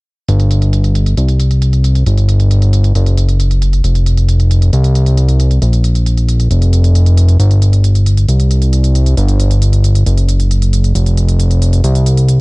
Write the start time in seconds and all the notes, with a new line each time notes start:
0.28 G1, closed hi-hat
0.40 closed hi-hat
0.51 closed hi-hat
0.62 closed hi-hat
0.73 closed hi-hat
0.84 closed hi-hat
0.95 closed hi-hat
1.06 closed hi-hat
1.17 C2, closed hi-hat
1.28 closed hi-hat
1.40 closed hi-hat
1.51 closed hi-hat
1.62 closed hi-hat
1.73 closed hi-hat
1.84 closed hi-hat
1.95 closed hi-hat
2.06 G1, closed hi-hat
2.18 closed hi-hat
2.29 closed hi-hat
2.40 closed hi-hat
2.51 closed hi-hat
2.62 closed hi-hat
2.73 closed hi-hat
2.84 closed hi-hat
2.95 F#1, closed hi-hat
3.06 closed hi-hat
3.17 closed hi-hat
3.29 closed hi-hat
3.40 closed hi-hat
3.51 closed hi-hat
3.62 closed hi-hat
3.73 closed hi-hat
3.84 F1, closed hi-hat
3.95 closed hi-hat
4.06 closed hi-hat
4.17 closed hi-hat
4.29 closed hi-hat
4.40 closed hi-hat
4.51 closed hi-hat
4.62 closed hi-hat
4.73 C2, closed hi-hat
4.84 closed hi-hat
4.95 closed hi-hat
5.06 closed hi-hat
5.17 closed hi-hat
5.29 closed hi-hat
5.40 closed hi-hat
5.51 closed hi-hat
5.62 A#1, closed hi-hat
5.73 closed hi-hat
5.84 closed hi-hat
5.95 closed hi-hat
6.06 closed hi-hat
6.17 closed hi-hat
6.29 closed hi-hat
6.40 closed hi-hat
6.51 F1, closed hi-hat
6.62 closed hi-hat
6.73 closed hi-hat
6.84 closed hi-hat
6.95 closed hi-hat
7.06 closed hi-hat
7.17 closed hi-hat
7.29 closed hi-hat
7.40 G1, closed hi-hat
7.51 closed hi-hat
7.62 closed hi-hat
7.73 closed hi-hat
7.84 closed hi-hat
7.95 closed hi-hat
8.06 closed hi-hat
8.17 closed hi-hat
8.29 C2, closed hi-hat
8.40 closed hi-hat
8.51 closed hi-hat
8.62 closed hi-hat
8.73 closed hi-hat
8.84 closed hi-hat
8.95 closed hi-hat
9.06 closed hi-hat
9.17 G1, closed hi-hat
9.28 closed hi-hat
9.40 closed hi-hat
9.51 closed hi-hat
9.62 closed hi-hat
9.73 closed hi-hat
9.84 closed hi-hat
9.95 closed hi-hat
10.06 F#1, closed hi-hat
10.18 closed hi-hat
10.29 closed hi-hat
10.40 closed hi-hat
10.51 closed hi-hat
10.62 closed hi-hat
10.73 closed hi-hat
10.84 closed hi-hat
10.95 F1, closed hi-hat
11.06 closed hi-hat
11.17 closed hi-hat
11.29 closed hi-hat
11.40 closed hi-hat
11.51 closed hi-hat
11.62 closed hi-hat
11.73 closed hi-hat
11.84 C2, closed hi-hat
11.95 closed hi-hat
12.06 closed hi-hat
12.17 closed hi-hat
12.29 closed hi-hat